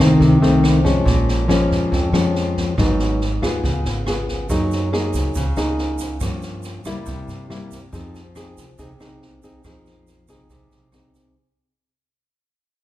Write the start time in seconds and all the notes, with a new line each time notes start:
Already playing: F2
0.00 C2 D#3 A3 C4
0.20 C2 C3, kick, snare
0.42 C2 D#3 A3 C4, snare
0.64 cross-stick, snare
0.84 F3 G#3 C#4, kick, snare
1.06 A#1 A#2, kick, snare
1.28 snare
1.48 F3 G#3 C#4, cross-stick, snare
1.71 F2, kick, snare
1.92 F2, kick, snare
2.12 F2 F3 G#3 C#4, cross-stick, snare
2.35 snare
2.56 kick, snare
2.77 G#1 G#2 F#3 B3 D#4, kick, cross-stick, snare
2.99 snare
3.21 snare
3.42 D#2 B3 F4 G#4, kick, cross-stick, snare
3.63 C#2 C#3, kick, snare
3.84 G#1, snare
4.06 B3 F4 G#4, cross-stick, snare
4.28 kick, snare
4.49 F#2 F#3 A#3 D#4 G#4, kick, snare, shaker
4.71 snare, shaker
4.93 A#3 D#4 G#4, cross-stick, snare
5.13 C#2, kick, snare, shaker
5.35 C#2 C#3, kick, snare, shaker
5.56 C#2 A#3 D#4 G#4, cross-stick, snare, shaker
5.78 snare
5.98 kick, snare, shaker
6.20 G2 F3 A#3 C#4, kick, cross-stick, snare, shaker
6.42 snare, shaker
6.63 snare, shaker
6.84 C#3 G3 A#3 E4, kick, cross-stick, snare, shaker
7.06 C2 C3, kick, snare, shaker
7.28 G2, snare, shaker
7.50 G3 A#3 E4, cross-stick, snare
7.71 kick, snare, shaker
7.92 F2 F3 C4 D#4 G#4, kick, snare, shaker
8.15 snare, shaker
8.35 C4 D#4 G#4, cross-stick, snare, shaker
8.57 C2, kick, snare, shaker
8.78 C2 C3 C4 D#4 G#4, kick, snare, shaker
8.99 C2 C4 D#4 G#4, cross-stick, snare, shaker
9.22 snare
9.43 C4 D#4 G#4, kick, snare, shaker
9.64 F2 F3 C4 D#4 G#4, kick, cross-stick, snare, shaker
9.86 snare, shaker
10.07 snare, shaker
10.28 C2 C4 D#4 G#4, kick, cross-stick, snare, shaker
10.50 C2 C3, kick, snare, shaker
10.70 C2, snare, shaker
10.92 C4 D#4 G#4, cross-stick, snare, shaker
11.14 kick, snare, shaker